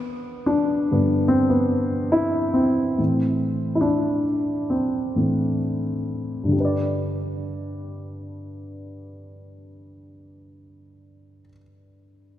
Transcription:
Already playing: B3
0.46 D4
0.91 G2 D3 B3
1.28 C4
1.50 B3
2.12 E4
2.54 C4
2.98 A2 E3 C4
3.75 E4
3.81 D4
4.70 C4
5.16 A2 E3 C4
6.44 G2 D3
6.52 G3
6.56 D4
6.60 B4
6.65 D5

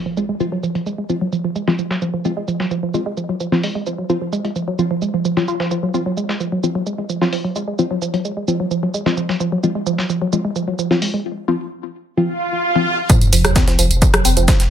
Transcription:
Already playing: impact
0.06 F3
0.17 G#3, shaker
0.29 G#3
0.40 F3 C4 F4, shaker
0.52 F#3
0.63 F3, shaker
0.75 F3, closed hi-hat
0.86 G#3, shaker
0.98 G#3
1.09 F3 C4 F4, shaker
1.21 F#3
1.33 F3, shaker
1.44 F3
1.56 G#3, shaker
1.68 F3 G#3 C4 F4, snare
1.79 F3, shaker
1.91 F#3, snare
2.02 F3, shaker
2.14 F3
2.25 F3 G#3 C4 F4, shaker
2.37 G#3
2.48 F3, shaker
2.60 F#3, snare
2.71 F3, shaker
2.83 F3
2.94 F3 G#3 C4 F4, shaker
3.06 G#3
3.17 F3, shaker
3.29 F#3
3.40 F3, shaker
3.52 F3 C4 F4, snare
3.63 G#3, open hi-hat
3.75 G#3
3.86 F3, shaker
3.98 F#3
4.10 F3 C4 F4, shaker
4.21 F3
4.33 G#3, shaker
4.45 G#3, closed hi-hat
4.56 F3, shaker
4.68 F#3
4.79 F3 C4 F4, shaker
4.91 F3
5.02 G#3, shaker
5.14 F3
5.25 F3, shaker
5.37 F3 F#3 C4 F4, snare
5.48 F4, shaker
5.60 F3, snare
5.71 F3, shaker
5.83 F#3
5.94 F3 C4 F4, shaker
6.06 F#3
6.17 G#3, shaker
6.29 G#3, snare
6.40 F3, shaker
6.52 F#3
6.63 F3 C4 F4, shaker
6.75 F#3
6.86 G#3, shaker
6.98 G#3
7.10 F3, shaker
7.21 F3 F#3 C4 F4, snare
7.33 F3, open hi-hat
7.45 F#3
7.56 G#3, shaker
7.68 G#3
7.79 F3 C4 F4, shaker
7.91 F#3
8.02 F3, shaker
8.14 F#3, closed hi-hat
8.25 G#3, shaker
8.37 G#3
8.48 F3 C4 F4, shaker
8.60 F#3
8.71 F3, shaker
8.83 F#3
8.94 G#3, shaker
9.06 F3 G#3 C4 F4, snare
9.17 F3, shaker
9.29 F#3, snare
9.40 F3, shaker
9.52 F#3
9.63 F3 G#3 C4 F4, shaker
9.75 G#3
9.87 F3, shaker
9.98 F#3, snare
10.10 F3, shaker
10.22 F#3
10.33 F3 G#3 C4 F4, shaker
10.45 G#3
10.56 F3, shaker
10.68 F#3
10.79 F3, shaker
10.91 F3 F#3 C4 F4, snare
11.02 G#3, open hi-hat
11.14 G#3
11.48 F3 C4 F4
12.17 F3 C4 F4, swell
12.75 F3 C4 F4
13.10 F3, kick, closed hi-hat, tambourine, sub drop, shaker
13.21 closed hi-hat, tambourine
13.33 F1 F3, open hi-hat, tambourine, shaker
13.45 F1 F#3, cross-stick, closed hi-hat, tambourine
13.56 C4, kick, snare, closed hi-hat, tambourine, shaker
13.68 F3, snare, closed hi-hat
13.79 F1 F3, open hi-hat, tambourine, shaker
13.91 F1, closed hi-hat, tambourine
14.02 F3, kick, closed hi-hat, tambourine, shaker
14.14 F#3, cross-stick, closed hi-hat
14.25 F1 C4, open hi-hat, tambourine, shaker
14.37 F1 F3, closed hi-hat, tambourine
14.48 F3, kick, snare, closed hi-hat, tambourine, shaker
14.60 snare, closed hi-hat, tambourine

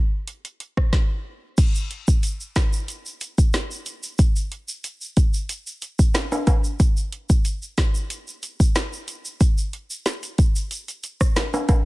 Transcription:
0.27 closed hi-hat
0.45 closed hi-hat
0.60 closed hi-hat
0.77 kick, cross-stick
0.93 kick, snare
1.58 kick, closed hi-hat, crash, shaker
1.75 shaker
1.91 closed hi-hat
2.08 kick, shaker
2.23 closed hi-hat, shaker
2.40 shaker
2.56 kick, snare, closed hi-hat, shaker
2.73 shaker
2.88 closed hi-hat, shaker
3.06 shaker
3.21 closed hi-hat, shaker
3.38 kick, shaker
3.54 snare, closed hi-hat, shaker
3.71 shaker
3.86 closed hi-hat, shaker
4.03 shaker
4.18 kick, closed hi-hat, shaker
4.36 shaker
4.52 closed hi-hat
4.68 shaker
4.84 closed hi-hat, shaker
5.01 shaker
5.17 kick, closed hi-hat, shaker
5.34 shaker
5.49 closed hi-hat, shaker
5.67 shaker
5.82 closed hi-hat, shaker
5.99 kick, shaker
6.14 snare, closed hi-hat, high timbale, shaker
6.32 high timbale, shaker
6.47 kick, closed hi-hat, high timbale, shaker
6.64 shaker
6.80 kick, closed hi-hat, shaker
6.97 shaker
7.12 closed hi-hat
7.29 kick, shaker
7.45 closed hi-hat, shaker
7.62 shaker
7.78 kick, snare, closed hi-hat, shaker
7.95 shaker
8.10 closed hi-hat, shaker
8.28 shaker
8.43 closed hi-hat, shaker
8.60 kick, shaker
8.76 snare, closed hi-hat, shaker
8.93 shaker
9.08 closed hi-hat, shaker
9.25 shaker
9.41 kick, closed hi-hat, shaker
9.58 shaker
9.73 closed hi-hat
9.90 shaker
10.06 snare, closed hi-hat, shaker
10.23 closed hi-hat, shaker
10.38 kick, closed hi-hat, shaker
10.56 shaker
10.71 closed hi-hat, shaker
10.88 closed hi-hat, shaker
11.04 closed hi-hat, shaker
11.21 kick, cross-stick, shaker
11.36 snare, closed hi-hat, high timbale, shaker
11.54 high timbale, shaker
11.69 kick, closed hi-hat, high timbale, shaker

